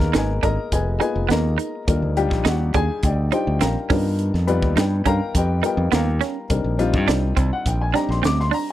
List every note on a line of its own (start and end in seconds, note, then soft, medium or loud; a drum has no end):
0.00 0.13 D#2 medium
0.00 0.93 G#3 medium
0.00 0.93 A#3 medium
0.00 0.93 B3 medium
0.00 0.93 D#4 medium
0.00 0.42 A#4 loud
0.00 snare soft
0.13 0.41 G#1 medium
0.13 0.30 D#4 medium
0.13 0.43 G#4 medium
0.13 0.43 B4 medium
0.13 0.42 D#5 medium
0.13 0.43 G#5 medium
0.13 snare loud
0.13 closed hi-hat medium
0.43 0.57 G#1 medium
0.43 0.59 D4 medium
0.43 0.71 A#4 medium
0.43 0.71 D#5 medium
0.43 0.71 A#5 loud
0.43 kick medium
0.43 closed hi-hat medium
0.72 0.99 F1 medium
0.72 0.99 G#4 medium
0.72 0.99 B4 medium
0.72 0.99 D#5 medium
0.72 0.98 G#5 medium
0.72 kick medium
0.72 closed hi-hat medium
1.00 1.82 G#3 medium
1.00 1.82 A#3 medium
1.00 1.82 B3 medium
1.00 1.17 D#4 medium
1.00 1.82 D#4 medium
1.00 1.82 F4 medium
1.00 1.29 G#4 medium
1.00 1.29 B4 medium
1.00 1.29 D#5 medium
1.00 1.28 G#5 medium
1.00 closed hi-hat medium
1.16 1.29 F1 medium
1.29 1.57 D#2 medium
1.29 1.45 B3 medium
1.29 1.87 A#4 medium
1.29 2.13 D#5 medium
1.29 2.13 A#5 medium
1.29 snare medium
1.29 closed hi-hat medium
1.58 1.74 D#4 medium
1.58 closed hi-hat medium
1.88 2.01 D#2 medium
1.88 2.15 G3 medium
1.88 2.15 D4 medium
1.88 2.15 D#4 medium
1.88 2.15 F4 medium
1.88 2.15 A#4 medium
1.88 kick loud
1.88 closed hi-hat medium
2.02 2.31 D2 medium
2.17 3.25 G3 medium
2.17 3.25 D4 medium
2.17 3.25 D#4 medium
2.17 3.25 F4 medium
2.17 3.04 G4 loud
2.17 closed hi-hat medium
2.31 2.44 A#1 medium
2.31 kick medium
2.31 snare soft
2.45 2.72 D#2 medium
2.45 2.61 D#4 medium
2.45 2.75 F#4 medium
2.45 2.75 F#5 medium
2.45 snare loud
2.45 closed hi-hat medium
2.74 2.88 D#2 medium
2.74 2.91 D4 medium
2.74 3.03 G#4 medium
2.74 3.03 G#5 loud
2.74 kick medium
2.74 closed hi-hat medium
3.03 3.30 D2 medium
3.03 3.32 G4 medium
3.03 3.32 D5 medium
3.03 3.32 D#5 medium
3.03 3.32 G5 medium
3.03 kick medium
3.03 closed hi-hat medium
3.32 3.88 G3 medium
3.32 3.90 D4 medium
3.32 3.48 D#4 medium
3.32 3.88 D#4 medium
3.32 3.88 F4 medium
3.32 3.61 G4 medium
3.32 3.90 C5 medium
3.32 3.61 D5 medium
3.32 3.61 D#5 medium
3.32 3.60 G5 loud
3.32 closed hi-hat medium
3.47 3.60 D2 medium
3.61 3.75 A#1 medium
3.61 3.77 C4 medium
3.61 3.88 A#4 medium
3.61 4.44 F5 medium
3.61 4.44 G5 medium
3.61 4.44 A#5 medium
3.61 snare medium
3.61 closed hi-hat medium
3.89 4.30 G2 medium
3.89 4.44 G3 medium
3.89 4.44 B3 medium
3.89 4.06 C#4 medium
3.89 4.44 D#4 medium
3.89 4.44 F4 medium
3.89 4.44 A#4 medium
3.89 kick loud
3.89 open hi-hat medium
4.19 closed hi-hat medium
4.34 4.62 F2 medium
4.34 snare soft
4.47 5.55 G3 loud
4.47 5.55 B3 medium
4.47 5.55 D#4 medium
4.47 5.56 F4 medium
4.47 4.78 B4 loud
4.47 closed hi-hat medium
4.62 4.76 D#2 medium
4.62 kick medium
4.76 5.03 G2 medium
4.76 4.93 D#4 medium
4.76 5.06 G4 medium
4.76 5.06 B4 medium
4.76 5.06 D#5 medium
4.76 5.05 G5 medium
4.76 snare loud
4.76 closed hi-hat medium
5.05 5.19 G2 medium
5.05 5.22 C#4 medium
5.05 5.34 A#4 medium
5.05 5.34 F5 medium
5.05 5.34 G5 medium
5.05 5.34 A#5 loud
5.05 kick medium
5.05 closed hi-hat medium
5.35 5.62 F2 medium
5.35 5.64 G4 medium
5.35 5.64 B4 medium
5.35 5.64 D#5 medium
5.35 5.64 G5 medium
5.35 kick medium
5.35 closed hi-hat medium
5.63 6.44 G3 medium
5.63 6.44 B3 medium
5.63 5.79 D#4 medium
5.63 6.44 D#4 medium
5.63 6.44 F4 medium
5.63 5.92 G4 medium
5.63 5.94 A#4 medium
5.63 5.93 B4 medium
5.63 5.93 D#5 medium
5.63 5.93 G5 medium
5.63 closed hi-hat medium
5.77 5.91 F2 medium
5.92 6.19 D#2 medium
5.92 6.08 B3 medium
5.92 6.48 A#4 medium
5.92 6.76 F5 medium
5.92 6.76 G5 medium
5.92 6.76 A#5 medium
5.92 snare loud
5.92 closed hi-hat medium
6.21 6.37 C#4 medium
6.21 snare soft
6.21 closed hi-hat medium
6.49 6.64 C2 medium
6.49 6.77 G3 medium
6.49 6.77 C4 medium
6.49 6.77 D4 medium
6.49 6.77 D#4 medium
6.49 6.77 A#4 medium
6.49 kick medium
6.49 closed hi-hat medium
6.64 6.95 A#1 medium
6.79 7.86 G3 medium
6.79 7.86 C4 medium
6.79 7.87 D4 medium
6.79 7.87 D#4 medium
6.79 7.87 F4 loud
6.79 closed hi-hat medium
6.93 7.07 G2 medium
6.93 kick medium
7.08 7.35 C2 medium
7.08 7.24 D4 medium
7.08 snare loud
7.08 closed hi-hat medium
7.37 7.50 C2 medium
7.37 7.53 C4 medium
7.37 kick medium
7.37 closed hi-hat medium
7.53 7.66 F#5 medium
7.66 7.92 A#1 medium
7.66 7.81 G5 medium
7.66 kick medium
7.66 closed hi-hat medium
7.81 7.95 G#5 medium
7.94 8.72 G3 medium
7.94 8.72 C4 medium
7.94 8.10 D4 medium
7.94 8.72 D4 medium
7.94 8.72 D#4 medium
7.94 8.72 G4 medium
7.94 8.09 A#5 loud
7.94 snare soft
7.94 closed hi-hat medium
8.09 8.22 A#1 medium
8.09 8.24 C6 medium
8.09 snare soft
8.23 8.50 D2 medium
8.23 8.39 C4 medium
8.23 8.38 D6 loud
8.23 snare loud
8.23 closed hi-hat medium
8.40 8.53 C6 loud
8.40 snare soft
8.51 8.68 D4 medium
8.51 8.67 A#5 loud
8.51 open hi-hat medium